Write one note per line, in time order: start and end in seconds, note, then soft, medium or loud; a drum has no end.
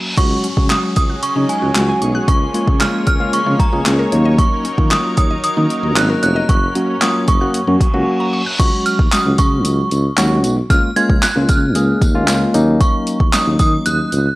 0.00 0.13 F#3 medium
0.00 0.13 A#3 medium
0.00 0.14 C#4 medium
0.00 0.14 F#4 medium
0.00 reverse cymbal medium
0.17 0.33 C#2 loud
0.17 0.46 F#3 medium
0.17 2.26 F#3 medium
0.17 0.28 F#3 medium
0.17 0.46 G#3 medium
0.17 2.26 C#4 medium
0.17 0.46 C#4 medium
0.17 0.46 F#4 medium
0.17 4.08 G#4 medium
0.17 8.56 C#5 medium
0.17 0.72 C#6 loud
0.17 kick loud
0.17 closed hi-hat medium
0.17 crash medium
0.17 downlifter medium
0.44 0.54 C#4 medium
0.44 closed hi-hat medium
0.57 0.73 C#3 medium
0.57 1.14 F#3 medium
0.57 1.14 G#3 medium
0.57 1.14 C#4 medium
0.57 1.14 F#4 medium
0.57 kick medium
0.70 0.81 F#5 medium
0.70 0.82 D#6 loud
0.70 snare medium
0.70 clap loud
0.70 closed hi-hat medium
0.96 1.12 C#2 medium
0.96 1.07 C#6 loud
0.96 1.24 D#6 loud
0.96 kick medium
0.96 closed hi-hat medium
1.10 1.20 F#6 medium
1.23 1.28 C#3 soft
1.23 1.50 C#6 loud
1.23 closed hi-hat loud
1.36 1.44 C#3 medium
1.36 1.64 F#3 medium
1.36 1.64 G#3 medium
1.36 1.47 G#3 medium
1.36 1.65 C#4 medium
1.36 1.65 D#4 medium
1.49 1.98 G#5 medium
1.49 closed hi-hat medium
1.62 1.70 C#2 medium
1.62 1.73 F#4 medium
1.75 1.91 C#2 medium
1.75 2.28 F#3 medium
1.75 2.28 G#3 medium
1.75 2.28 C#4 medium
1.75 2.28 F#4 medium
1.75 snare medium
1.75 clap loud
1.75 closed hi-hat loud
1.89 1.99 G#5 medium
2.02 2.18 B1 medium
2.02 2.12 C#6 medium
2.02 closed hi-hat medium
2.15 2.25 F#6 loud
2.28 2.44 C#2 loud
2.28 4.10 F3 medium
2.28 2.39 G#3 medium
2.28 4.10 A#3 medium
2.28 2.82 C#6 loud
2.28 kick loud
2.28 closed hi-hat medium
2.54 2.73 G#3 medium
2.54 2.73 A#3 medium
2.54 2.65 C#4 medium
2.54 2.73 C#4 medium
2.54 2.73 F4 medium
2.54 closed hi-hat medium
2.68 2.83 C#3 medium
2.68 kick medium
2.80 3.09 G#3 medium
2.80 3.09 A#3 medium
2.80 3.09 C#4 medium
2.80 3.09 F4 medium
2.80 2.91 G#4 medium
2.80 3.06 F6 loud
2.80 snare medium
2.80 clap loud
2.80 closed hi-hat medium
3.07 3.23 C#2 medium
3.07 3.18 C#5 loud
3.07 3.34 F6 loud
3.07 kick medium
3.07 closed hi-hat medium
3.20 3.39 G#3 medium
3.20 3.39 A#3 medium
3.20 3.39 C#4 medium
3.20 3.39 F4 medium
3.20 3.31 F5 medium
3.33 3.39 C#3 soft
3.33 3.58 C#6 medium
3.33 closed hi-hat loud
3.46 3.54 C#3 loud
3.46 3.65 G#3 medium
3.46 3.65 A#3 medium
3.46 3.57 A#3 loud
3.46 3.66 C#4 medium
3.46 3.66 F4 medium
3.60 4.09 A#5 medium
3.60 kick loud
3.60 closed hi-hat medium
3.72 3.81 C#2 medium
3.72 4.12 G#3 medium
3.72 4.11 A#3 medium
3.72 4.11 C#4 medium
3.72 3.83 F4 medium
3.72 4.12 G#4 medium
3.86 4.02 C#2 loud
3.86 snare medium
3.86 clap loud
3.86 closed hi-hat loud
3.99 4.10 A#4 medium
4.12 4.44 D#2 loud
4.12 4.65 F#3 medium
4.12 8.56 F#3 medium
4.12 4.65 A#3 medium
4.12 4.65 C#4 medium
4.12 6.47 D#4 medium
4.12 4.65 D#4 medium
4.12 8.56 A#4 medium
4.12 4.23 C#5 medium
4.12 closed hi-hat medium
4.25 4.36 D#5 loud
4.38 4.49 F#3 medium
4.38 4.93 C#6 medium
4.38 kick loud
4.38 closed hi-hat medium
4.65 4.75 C#4 medium
4.65 closed hi-hat medium
4.78 4.94 D#3 medium
4.78 5.35 F#3 medium
4.78 5.35 A#3 medium
4.78 5.35 C#4 medium
4.78 5.35 F4 medium
4.78 kick medium
4.91 5.02 F#4 medium
4.91 5.16 D#6 medium
4.91 snare medium
4.91 clap loud
4.91 closed hi-hat medium
5.17 5.33 D#2 medium
5.17 5.28 C#5 loud
5.17 5.42 D#6 loud
5.17 kick loud
5.17 closed hi-hat medium
5.31 5.41 D#5 medium
5.44 5.49 D#3 soft
5.44 5.98 D#6 loud
5.44 closed hi-hat loud
5.57 5.65 D#3 loud
5.57 5.85 F#3 medium
5.57 5.85 A#3 medium
5.57 5.68 A#3 medium
5.57 5.86 C#4 medium
5.57 5.86 D#4 medium
5.70 closed hi-hat medium
5.83 5.98 D#2 medium
5.83 5.94 D#4 medium
5.96 6.12 G#1 medium
5.96 6.49 F#3 medium
5.96 6.49 A#3 medium
5.96 6.49 C#4 medium
5.96 6.49 D#4 medium
5.96 6.21 F#6 loud
5.96 snare medium
5.96 clap loud
5.96 closed hi-hat loud
6.10 6.20 A#4 medium
6.23 6.39 F1 loud
6.23 6.33 C#5 medium
6.23 6.47 F#6 loud
6.23 closed hi-hat medium
6.36 6.46 D#5 loud
6.49 6.65 F#1 loud
6.49 6.60 F#3 medium
6.49 8.57 C#4 medium
6.49 7.03 C#6 loud
6.49 kick loud
6.49 closed hi-hat medium
6.75 6.94 F#3 medium
6.75 6.94 A#3 medium
6.75 6.86 C#4 medium
6.75 6.94 C#4 medium
6.75 6.95 F#4 medium
6.75 closed hi-hat medium
7.01 7.30 F#3 medium
7.01 7.30 A#3 medium
7.01 7.30 C#4 medium
7.01 7.30 F4 medium
7.01 7.12 F#5 medium
7.01 7.29 D#6 loud
7.01 snare medium
7.01 clap loud
7.01 closed hi-hat medium
7.28 7.44 F#1 medium
7.28 7.39 C#6 loud
7.28 8.29 C#6 medium
7.28 kick loud
7.28 closed hi-hat medium
7.41 7.60 F#3 medium
7.41 7.60 A#3 medium
7.41 7.60 C#4 medium
7.41 7.60 F#4 loud
7.41 7.52 F#6 medium
7.54 7.60 F#2 soft
7.54 closed hi-hat loud
7.54 reverse cymbal medium
7.67 7.75 F#2 loud
7.67 7.86 F#3 medium
7.67 7.78 A#3 medium
7.67 7.87 A#3 medium
7.67 7.87 C#4 medium
7.67 7.87 F#4 medium
7.81 kick loud
7.81 closed hi-hat medium
7.94 8.02 C#2 medium
7.94 8.41 F#3 loud
7.94 8.41 A#3 medium
7.94 8.41 C#4 medium
7.94 8.04 F#4 medium
7.94 8.42 F#4 loud
8.20 8.31 A#5 medium
8.33 8.44 C#6 medium
8.46 8.57 F#6 loud
8.59 8.68 C#2 loud
8.59 8.98 F#3 medium
8.59 8.98 G#3 medium
8.59 8.98 C#4 medium
8.59 8.98 F#4 medium
8.59 8.87 C#6 loud
8.59 kick loud
8.59 closed hi-hat medium
8.59 crash loud
8.59 tambourine soft
8.86 9.13 F6 loud
8.86 closed hi-hat medium
8.86 tambourine soft
8.99 9.07 D#2 medium
8.99 kick loud
9.12 9.88 F#3 medium
9.12 9.88 G#3 medium
9.12 9.89 C#4 medium
9.12 9.89 F#4 medium
9.12 9.39 D#6 loud
9.12 snare medium
9.12 clap loud
9.12 closed hi-hat medium
9.12 tambourine medium
9.25 9.33 C#2 loud
9.38 9.66 C#3 medium
9.38 10.40 C#6 medium
9.38 kick loud
9.38 closed hi-hat medium
9.38 tambourine medium
9.65 9.81 C#2 medium
9.65 closed hi-hat loud
9.65 tambourine soft
9.91 10.07 C#2 loud
9.91 closed hi-hat medium
9.91 tambourine soft
10.17 10.45 D#2 loud
10.17 10.55 F#3 loud
10.17 10.56 G#3 medium
10.17 10.56 C#4 medium
10.17 10.56 F#4 loud
10.17 snare medium
10.17 clap loud
10.17 closed hi-hat loud
10.17 tambourine loud
10.44 10.60 B1 medium
10.44 closed hi-hat medium
10.44 tambourine medium
10.70 10.78 C#2 loud
10.70 10.89 G#3 medium
10.70 10.89 A#3 medium
10.70 10.89 C#4 medium
10.70 10.89 F4 medium
10.70 10.95 F6 loud
10.70 kick loud
10.70 closed hi-hat medium
10.70 tambourine soft
10.96 11.25 G#3 medium
10.96 11.25 A#3 medium
10.96 11.25 C#4 medium
10.96 11.25 F4 loud
10.96 11.21 G#6 loud
10.96 closed hi-hat medium
10.96 tambourine soft
11.10 11.18 C#2 loud
11.10 kick loud
11.23 11.50 F#6 loud
11.23 snare medium
11.23 clap loud
11.23 closed hi-hat medium
11.23 tambourine medium
11.36 11.44 C#2 loud
11.36 11.64 G#3 medium
11.36 11.64 A#3 medium
11.36 11.65 C#4 medium
11.36 11.65 F4 medium
11.49 11.77 C#3 loud
11.49 12.50 F6 medium
11.49 kick loud
11.49 closed hi-hat medium
11.49 tambourine medium
11.75 11.91 C#2 medium
11.75 12.04 G#3 medium
11.75 12.04 A#3 medium
11.75 12.04 C#4 medium
11.75 12.04 G#4 medium
11.75 closed hi-hat loud
11.75 tambourine soft
12.02 12.29 D#2 medium
12.02 kick loud
12.02 closed hi-hat medium
12.02 tambourine soft
12.15 12.53 G#3 loud
12.15 12.53 A#3 loud
12.15 12.53 C#4 medium
12.15 12.53 F4 loud
12.28 12.44 C#2 loud
12.28 snare medium
12.28 clap loud
12.28 closed hi-hat loud
12.28 tambourine loud
12.54 12.78 D#2 loud
12.54 13.17 F#3 medium
12.54 13.17 A#3 medium
12.54 13.18 C#4 medium
12.54 13.18 D#4 loud
12.54 closed hi-hat medium
12.54 tambourine medium
12.81 13.35 C#6 medium
12.81 kick loud
12.81 closed hi-hat medium
12.81 tambourine soft
13.07 closed hi-hat medium
13.07 tambourine soft
13.20 13.28 D#2 medium
13.20 kick medium
13.33 14.09 F#3 medium
13.33 14.09 A#3 medium
13.33 14.10 C#4 medium
13.33 14.10 D#4 medium
13.33 13.58 D#6 loud
13.33 snare medium
13.33 clap loud
13.33 closed hi-hat medium
13.33 tambourine medium
13.46 13.54 D#2 loud
13.59 13.76 D#3 loud
13.59 13.87 D#6 loud
13.59 kick medium
13.59 closed hi-hat medium
13.59 tambourine medium
13.86 14.02 D#2 medium
13.86 14.35 F#6 loud
13.86 closed hi-hat loud
13.86 tambourine medium
14.12 14.28 C#2 loud
14.12 closed hi-hat medium
14.12 tambourine soft